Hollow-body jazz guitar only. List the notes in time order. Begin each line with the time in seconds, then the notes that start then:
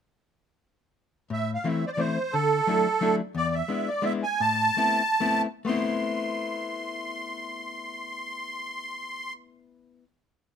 1.30 A2
1.64 E3 A3 C4 E4
1.97 E3 A3 C4 E4
2.34 D3
2.67 F#3 A3 D4 E4
3.01 F#3 A3 D4 E4
3.35 E2
3.68 G#3 B3 D4 E4
4.02 G#3 B3 D4 E4
4.40 A2
4.77 A3 B3 C4 E4
5.20 A3 B3 C4 E4
5.65 A3 B3 C4
5.69 E4